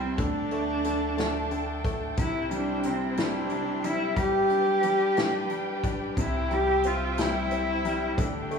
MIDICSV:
0, 0, Header, 1, 6, 480
1, 0, Start_track
1, 0, Key_signature, 0, "major"
1, 0, Tempo, 665927
1, 133, Time_signature, 6, 3, 24, 8
1, 6191, End_track
2, 0, Start_track
2, 0, Title_t, "String section"
2, 0, Program_c, 0, 48
2, 0, Note_on_c, 0, 64, 68
2, 0, Note_on_c, 0, 76, 60
2, 0, Note_on_c, 0, 79, 66
2, 0, Note_on_c, 0, 84, 72
2, 118, Note_off_c, 0, 64, 0
2, 118, Note_off_c, 0, 79, 0
2, 118, Note_off_c, 0, 84, 0
2, 120, Note_off_c, 0, 76, 0
2, 132, Note_on_c, 0, 81, 77
2, 134, Note_on_c, 0, 62, 73
2, 136, Note_on_c, 0, 69, 61
2, 136, Note_on_c, 0, 79, 66
2, 1556, Note_off_c, 0, 81, 0
2, 1557, Note_off_c, 0, 62, 0
2, 1558, Note_off_c, 0, 69, 0
2, 1571, Note_on_c, 0, 67, 71
2, 1573, Note_on_c, 0, 64, 70
2, 1576, Note_on_c, 0, 72, 67
2, 2975, Note_off_c, 0, 79, 0
2, 2989, Note_off_c, 0, 64, 0
2, 2991, Note_off_c, 0, 72, 0
2, 3002, Note_on_c, 0, 79, 85
2, 3003, Note_on_c, 0, 62, 75
2, 3004, Note_on_c, 0, 71, 73
2, 4433, Note_off_c, 0, 79, 0
2, 4434, Note_off_c, 0, 62, 0
2, 4435, Note_off_c, 0, 71, 0
2, 4448, Note_on_c, 0, 72, 66
2, 4449, Note_on_c, 0, 79, 84
2, 4450, Note_on_c, 0, 76, 72
2, 5881, Note_off_c, 0, 72, 0
2, 5882, Note_off_c, 0, 76, 0
2, 5882, Note_off_c, 0, 79, 0
2, 5889, Note_on_c, 0, 69, 62
2, 5893, Note_on_c, 0, 62, 76
2, 5895, Note_on_c, 0, 79, 78
2, 6191, Note_off_c, 0, 62, 0
2, 6191, Note_off_c, 0, 67, 0
2, 6191, Note_off_c, 0, 69, 0
2, 6191, Note_off_c, 0, 79, 0
2, 6191, End_track
3, 0, Start_track
3, 0, Title_t, "Cello"
3, 0, Program_c, 1, 42
3, 0, Note_on_c, 1, 60, 90
3, 138, Note_off_c, 1, 60, 0
3, 141, Note_on_c, 1, 62, 101
3, 1306, Note_off_c, 1, 62, 0
3, 1584, Note_on_c, 1, 64, 94
3, 1801, Note_off_c, 1, 64, 0
3, 1824, Note_on_c, 1, 62, 94
3, 2064, Note_on_c, 1, 60, 80
3, 2075, Note_off_c, 1, 62, 0
3, 2302, Note_on_c, 1, 62, 96
3, 2313, Note_off_c, 1, 60, 0
3, 2782, Note_on_c, 1, 64, 98
3, 2793, Note_off_c, 1, 62, 0
3, 3012, Note_off_c, 1, 64, 0
3, 3018, Note_on_c, 1, 67, 108
3, 4186, Note_off_c, 1, 67, 0
3, 4471, Note_on_c, 1, 64, 93
3, 4711, Note_on_c, 1, 67, 110
3, 4722, Note_off_c, 1, 64, 0
3, 4947, Note_on_c, 1, 65, 94
3, 4958, Note_off_c, 1, 67, 0
3, 5192, Note_on_c, 1, 64, 94
3, 5203, Note_off_c, 1, 65, 0
3, 5905, Note_off_c, 1, 64, 0
3, 5908, Note_on_c, 1, 62, 81
3, 6191, Note_off_c, 1, 62, 0
3, 6191, End_track
4, 0, Start_track
4, 0, Title_t, "Grand piano"
4, 0, Program_c, 2, 0
4, 0, Control_c, 2, 64, 127
4, 0, Note_on_c, 2, 48, 54
4, 0, Note_on_c, 2, 55, 54
4, 119, Note_off_c, 2, 48, 0
4, 125, Note_off_c, 2, 55, 0
4, 130, Note_on_c, 2, 50, 64
4, 142, Control_c, 2, 64, 0
4, 255, Control_c, 2, 64, 127
4, 373, Note_on_c, 2, 57, 55
4, 604, Note_off_c, 2, 50, 0
4, 614, Note_on_c, 2, 50, 57
4, 835, Note_off_c, 2, 57, 0
4, 846, Note_on_c, 2, 57, 58
4, 1080, Note_off_c, 2, 50, 0
4, 1091, Note_on_c, 2, 50, 52
4, 1319, Note_off_c, 2, 57, 0
4, 1330, Note_on_c, 2, 57, 60
4, 1556, Note_off_c, 2, 50, 0
4, 1563, Note_off_c, 2, 57, 0
4, 1570, Note_on_c, 2, 48, 64
4, 1580, Control_c, 2, 64, 0
4, 1699, Control_c, 2, 64, 127
4, 1809, Note_on_c, 2, 55, 54
4, 2043, Note_off_c, 2, 48, 0
4, 2054, Note_on_c, 2, 48, 57
4, 2281, Note_off_c, 2, 55, 0
4, 2291, Note_on_c, 2, 55, 61
4, 2520, Note_off_c, 2, 48, 0
4, 2531, Note_on_c, 2, 48, 49
4, 2759, Note_off_c, 2, 55, 0
4, 2770, Note_on_c, 2, 55, 54
4, 2991, Note_off_c, 2, 48, 0
4, 2993, Note_off_c, 2, 55, 0
4, 3003, Note_on_c, 2, 55, 69
4, 3011, Control_c, 2, 64, 0
4, 3133, Control_c, 2, 64, 127
4, 3245, Note_on_c, 2, 62, 51
4, 3478, Note_off_c, 2, 55, 0
4, 3489, Note_on_c, 2, 55, 54
4, 3716, Note_off_c, 2, 62, 0
4, 3727, Note_on_c, 2, 62, 54
4, 3960, Note_off_c, 2, 55, 0
4, 3971, Note_on_c, 2, 55, 47
4, 4199, Note_off_c, 2, 62, 0
4, 4210, Note_on_c, 2, 62, 55
4, 4437, Note_off_c, 2, 55, 0
4, 4442, Note_off_c, 2, 62, 0
4, 4452, Note_on_c, 2, 48, 60
4, 4457, Control_c, 2, 64, 0
4, 4592, Control_c, 2, 64, 127
4, 4694, Note_on_c, 2, 55, 55
4, 4938, Note_on_c, 2, 60, 51
4, 5167, Note_off_c, 2, 55, 0
4, 5178, Note_on_c, 2, 55, 54
4, 5409, Note_off_c, 2, 60, 0
4, 5420, Note_on_c, 2, 60, 50
4, 5650, Note_off_c, 2, 55, 0
4, 5661, Note_on_c, 2, 55, 59
4, 5869, Note_off_c, 2, 48, 0
4, 5884, Note_off_c, 2, 60, 0
4, 5891, Note_off_c, 2, 55, 0
4, 5893, Note_on_c, 2, 50, 67
4, 5905, Control_c, 2, 64, 0
4, 6030, Control_c, 2, 64, 127
4, 6134, Note_on_c, 2, 57, 62
4, 6191, Note_off_c, 2, 50, 0
4, 6191, Note_off_c, 2, 57, 0
4, 6191, End_track
5, 0, Start_track
5, 0, Title_t, "Upright bass"
5, 0, Program_c, 3, 32
5, 0, Note_on_c, 3, 36, 85
5, 104, Note_off_c, 3, 36, 0
5, 130, Note_on_c, 3, 38, 90
5, 1569, Note_off_c, 3, 38, 0
5, 1569, Note_on_c, 3, 36, 109
5, 3002, Note_off_c, 3, 36, 0
5, 3002, Note_on_c, 3, 31, 91
5, 4419, Note_off_c, 3, 31, 0
5, 4447, Note_on_c, 3, 36, 83
5, 5866, Note_off_c, 3, 36, 0
5, 5896, Note_on_c, 3, 38, 93
5, 6191, Note_off_c, 3, 38, 0
5, 6191, End_track
6, 0, Start_track
6, 0, Title_t, "Drums"
6, 129, Note_on_c, 9, 42, 83
6, 131, Note_on_c, 9, 36, 99
6, 201, Note_off_c, 9, 42, 0
6, 203, Note_off_c, 9, 36, 0
6, 368, Note_on_c, 9, 42, 47
6, 440, Note_off_c, 9, 42, 0
6, 608, Note_on_c, 9, 42, 83
6, 680, Note_off_c, 9, 42, 0
6, 851, Note_on_c, 9, 42, 82
6, 861, Note_on_c, 9, 38, 99
6, 923, Note_off_c, 9, 42, 0
6, 933, Note_off_c, 9, 38, 0
6, 1087, Note_on_c, 9, 42, 52
6, 1160, Note_off_c, 9, 42, 0
6, 1329, Note_on_c, 9, 42, 66
6, 1330, Note_on_c, 9, 36, 86
6, 1401, Note_off_c, 9, 42, 0
6, 1402, Note_off_c, 9, 36, 0
6, 1566, Note_on_c, 9, 42, 89
6, 1569, Note_on_c, 9, 36, 109
6, 1638, Note_off_c, 9, 42, 0
6, 1641, Note_off_c, 9, 36, 0
6, 1807, Note_on_c, 9, 42, 51
6, 1879, Note_off_c, 9, 42, 0
6, 2042, Note_on_c, 9, 42, 84
6, 2114, Note_off_c, 9, 42, 0
6, 2288, Note_on_c, 9, 42, 94
6, 2297, Note_on_c, 9, 38, 109
6, 2360, Note_off_c, 9, 42, 0
6, 2369, Note_off_c, 9, 38, 0
6, 2519, Note_on_c, 9, 42, 55
6, 2592, Note_off_c, 9, 42, 0
6, 2767, Note_on_c, 9, 42, 70
6, 2839, Note_off_c, 9, 42, 0
6, 3002, Note_on_c, 9, 36, 103
6, 3003, Note_on_c, 9, 42, 83
6, 3074, Note_off_c, 9, 36, 0
6, 3075, Note_off_c, 9, 42, 0
6, 3242, Note_on_c, 9, 42, 49
6, 3314, Note_off_c, 9, 42, 0
6, 3479, Note_on_c, 9, 42, 73
6, 3551, Note_off_c, 9, 42, 0
6, 3724, Note_on_c, 9, 42, 83
6, 3734, Note_on_c, 9, 38, 107
6, 3796, Note_off_c, 9, 42, 0
6, 3806, Note_off_c, 9, 38, 0
6, 3962, Note_on_c, 9, 42, 58
6, 4034, Note_off_c, 9, 42, 0
6, 4206, Note_on_c, 9, 36, 88
6, 4207, Note_on_c, 9, 42, 73
6, 4278, Note_off_c, 9, 36, 0
6, 4279, Note_off_c, 9, 42, 0
6, 4447, Note_on_c, 9, 42, 82
6, 4448, Note_on_c, 9, 36, 105
6, 4519, Note_off_c, 9, 42, 0
6, 4520, Note_off_c, 9, 36, 0
6, 4690, Note_on_c, 9, 42, 49
6, 4762, Note_off_c, 9, 42, 0
6, 4926, Note_on_c, 9, 42, 78
6, 4999, Note_off_c, 9, 42, 0
6, 5174, Note_on_c, 9, 42, 85
6, 5183, Note_on_c, 9, 38, 100
6, 5246, Note_off_c, 9, 42, 0
6, 5255, Note_off_c, 9, 38, 0
6, 5412, Note_on_c, 9, 42, 54
6, 5484, Note_off_c, 9, 42, 0
6, 5657, Note_on_c, 9, 42, 68
6, 5729, Note_off_c, 9, 42, 0
6, 5896, Note_on_c, 9, 36, 109
6, 5897, Note_on_c, 9, 42, 87
6, 5968, Note_off_c, 9, 36, 0
6, 5970, Note_off_c, 9, 42, 0
6, 6135, Note_on_c, 9, 42, 49
6, 6191, Note_off_c, 9, 42, 0
6, 6191, End_track
0, 0, End_of_file